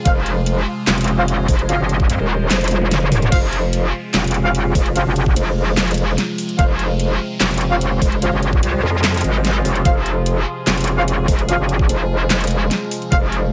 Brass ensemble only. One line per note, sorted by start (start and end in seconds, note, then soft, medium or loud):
0.06 0.11 F4 medium
0.06 0.11 C5 medium
0.06 0.11 F5 loud
1.18 1.23 F4 loud
1.18 1.23 C5 medium
1.18 1.23 F5 loud
1.69 1.77 F4 medium
1.69 1.77 C5 medium
1.69 1.77 F5 medium
3.32 3.37 F4 loud
3.32 3.37 C5 medium
3.32 3.37 F5 loud
4.45 4.50 F4 loud
4.45 4.50 C5 medium
4.45 4.50 F5 loud
4.95 5.04 F4 medium
4.95 5.04 C5 medium
4.95 5.04 F5 medium
6.59 6.64 F4 loud
6.59 6.64 C5 medium
6.59 6.64 F5 loud
7.71 7.76 F4 loud
7.71 7.76 C5 medium
7.71 7.76 F5 loud
8.22 8.31 F4 medium
8.22 8.31 C5 medium
8.22 8.31 F5 medium
9.85 9.91 F4 medium
9.85 9.91 C5 medium
9.85 9.91 F5 loud
10.98 11.03 F4 loud
10.98 11.03 C5 medium
10.98 11.03 F5 loud
11.49 11.57 F4 medium
11.49 11.57 C5 medium
11.49 11.57 F5 medium
13.12 13.17 F4 loud
13.12 13.17 C5 medium
13.12 13.17 F5 loud